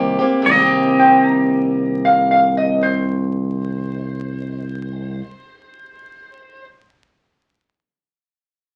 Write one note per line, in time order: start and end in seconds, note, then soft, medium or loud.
0.00 0.18 C2 medium
0.00 0.19 D#3 medium
0.00 0.20 A#3 medium
0.00 0.20 C4 medium
0.00 0.18 G4 medium
0.19 0.48 A#3 soft
0.19 0.47 C4 soft
0.19 0.46 G4 medium
0.42 5.22 C3 medium
0.46 5.22 C2 loud
0.46 5.27 D#3 medium
0.46 5.22 D#5 medium
0.51 5.31 A#3 medium
0.51 5.35 C4 medium
0.59 5.38 G4 medium
0.99 1.26 G5 medium
1.26 2.02 A#5 medium
2.05 2.30 F5 medium
2.31 2.56 F5 medium
2.57 2.82 D#5 medium
2.83 6.65 C5 medium